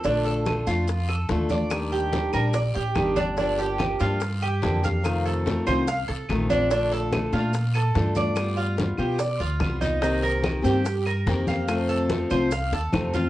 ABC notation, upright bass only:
X:1
M:4/4
L:1/8
Q:1/4=144
K:Bb
V:1 name="Upright bass" clef=bass
B,,,3 F,,3 E,,2- | E,,3 B,,,2 A,,, G,,,2- | G,,,3 G,,3 F,,2- | F,,3 C,,2 C,, B,,,2- |
B,,,3 B,,3 G,,2- | G,,3 =B,,2 D,, C,,2- | C,,3 G,,3 F,,2- | F,,3 C,,2 E,, F,,2 |]